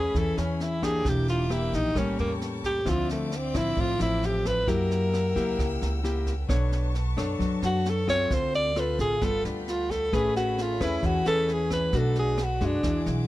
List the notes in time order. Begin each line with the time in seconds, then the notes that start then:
Already playing: E2 A3 C#4 G#4 B4 C#5 G#5 B5
0.14 E2 E3 A4, kick, snare
0.37 E2 C#4, snare
0.60 E4, snare
0.82 A#3 D4 G4 G#4, kick, cross-stick, snare
1.04 E1 E3 A#4 E5 G5 D6, kick, snare
1.09 G4
1.28 F4, snare
1.50 A#3 D4 E4 G4, cross-stick, snare
1.73 A#1 D#4, kick, snare
1.94 A1 A2 G3 A#3 C#4 A5 C#6, kick, cross-stick, snare
2.18 E2 A#3, snare
2.41 snare
2.63 G4, kick, snare
2.85 D2 D3 F3 C4 E4 C5 D5 E5 D6, kick, cross-stick, snare
2.89 F4
3.09 A3, snare
3.32 snare
3.36 C4
3.54 A1 F3 C4 E4, kick, cross-stick, snare
3.76 A1 A2 F4, kick, snare
3.99 A1 F3 C4 E4, snare
4.23 G4, snare
4.45 B4, kick, cross-stick, snare
4.66 F#2 F#3 A#3 E4 G4 A#4 F#5 G5 E6, kick, snare
4.91 snare
5.14 cross-stick, snare
5.35 C#2 A#3 E4 G4, kick, snare
5.58 C#2 C#3, kick, cross-stick, snare
5.82 C#2, snare
6.03 A#3 E4 G4, snare
6.26 kick, snare
6.48 B1 B3 D4 A4 B4 C#5 A5 C#6, kick, cross-stick, snare
6.72 snare
6.95 snare
7.17 F#2 D4 A4 C#5, kick, cross-stick, snare
7.39 F#2 F#3, kick, snare
7.62 F#2 F#4, snare
7.85 snare
7.90 A4
8.08 C4 F4 A4 C#5, kick, cross-stick, snare
8.30 D2 D3 A3 C5 F5 C6, kick, snare
8.54 D5, snare
8.76 C4 F4 A4 B4, cross-stick, snare
8.99 A1 G#4, kick, snare
9.21 G1 G3 B3 F4 A4 G5 B5, kick, cross-stick, snare
9.45 D2 D4, snare
9.68 F4, snare
9.90 A4, kick, snare
10.13 A1 A3 C#4 G#4 B4 C#5 G#5, kick, cross-stick, snare
10.36 F#4, snare
10.58 snare
10.62 F4
10.80 E2 C#4 E4 G#4 B4, kick, cross-stick, snare
11.02 E2 E3 F#4, kick, snare
11.25 E2 C#4 G#4 A4 B4, snare
11.48 snare
11.53 G#4
11.71 B4, kick, cross-stick, snare
11.92 B1 B2 A3 D4 F#4 D5 F#5, kick, snare
11.97 A4
12.15 G#4, snare
12.38 cross-stick, snare
12.44 F#4
12.61 F#2 G#3 D4 F#4, kick, snare
12.65 D4
12.83 E2 E3 G#4 E5 F#5 D6, kick, cross-stick, snare
13.06 B1, snare